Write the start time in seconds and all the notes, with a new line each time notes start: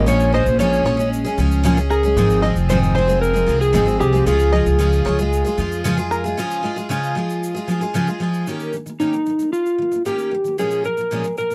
0.06 A#1 A#2 F3 G#3 C#4 G#4 C#5, shaker
0.20 shaker
0.32 F3 G#3 C#4 G#4 C5 D#5
0.46 A#1, shaker
0.59 A#2 F3 G#3 C#4 G#4 C#5, shaker
0.73 shaker
0.85 A#1 F3 G#3 C#4 G#4 C#5
0.97 G#3 C#4 G#4, shaker
1.13 shaker
1.24 G#3 C#4 G#4, shaker
1.38 C#2 F3 G#3 C#4 G#4, shaker
1.52 shaker
1.63 A#2 F3 G#3 C#4 G#4, shaker
1.77 G#3 C#4 G#4, shaker
1.90 G#4 A#4, shaker
2.03 G#3 C#4 G#4, shaker
2.16 G#1 G#2 D#3 F3 G#3 C4 G#4, shaker
2.30 shaker
2.42 F3 G#3 C4 G#4 D#5
2.55 F1, shaker
2.69 G#2 D#3 F3 G#3 C4 G#4 C5, shaker
2.83 shaker
2.95 F3 G#3 C4 G#4 C5
3.08 F3 G#3 C4 G#4, shaker
3.22 A#4, shaker
3.34 F3 G#3 C4 G#4, shaker
3.46 C2 F3 G#3 C4 G#4, shaker
3.61 G#4, shaker
3.73 G#1 G#2 D#3 F3 G#3 C4 G#4, shaker
3.86 F3 G#3 C4 G#4, shaker
4.00 C2 G4 G#4, shaker
4.13 F3 G#3 C4 G#4, shaker
4.26 C#2 C#3 F3 G#3 F4 G#4, shaker
4.39 shaker
4.53 F3 G#3 F4 G#4 D#5
4.66 C#2, shaker
4.79 C#3 F3 G#3 F4 G#4, shaker
4.93 shaker
5.05 C#2 F3 G#3 F4 G#4 C#5
5.19 G#3 F4 G#4, shaker
5.33 shaker
5.45 G#3 F4 G#4, shaker
5.58 F2 F3 G#3 F4 G#4, shaker
5.72 shaker
5.84 C#3 F3 G#3 F4 G#4, shaker
5.97 G#3 F4 G#4, shaker
6.11 A#4, shaker
6.24 G#3 F4 G#4, shaker
6.37 C#3 F3 G#3 F4 G#4, shaker
6.51 shaker
6.63 F3 G#3 F4 G#4
6.76 G#3 F4 G#4, shaker
6.89 C#3 F3 G#3 F4 G#4, shaker
7.04 shaker
7.15 F3 G#3 F4 G#4
7.30 shaker
7.43 shaker
7.55 G#3 F4 G#4, shaker
7.68 F3 G#3 F4 G#4, shaker
7.81 G#3 F4 G#4, shaker
7.94 C#3 F3 G#3 F4 G#4, shaker
8.07 G#3 F4 G#4, shaker
8.20 F3 G#3 F4 G#4
8.34 shaker
8.47 D#3 A#3 C#4 G4, shaker
8.60 shaker
8.73 D#3 A#3, shaker
8.86 D#3 A#3, shaker
9.00 D#3 A#3 C#4 D#4 G4, shaker
9.13 D#3 A#3, shaker
9.26 D#3 A#3, shaker
9.39 D#3 A#3, shaker
9.53 F4, shaker
9.66 shaker
9.78 D#3 A#3
9.92 D#3 A#3, shaker
10.05 D#3 A#3 C#4 G4, shaker
10.19 shaker
10.31 D#3 A#3
10.44 D#3 A#3, shaker
10.58 A#2 F3 G#3 C#4 G#4, shaker
10.71 shaker
10.84 A#2 F3 A#4, shaker
10.97 A#2 F3, shaker
11.11 A#2 F3 G#3 C#4 G#4, shaker
11.24 A#2 F3, shaker
11.37 A#2 F3 A#4, shaker
11.50 A#2, shaker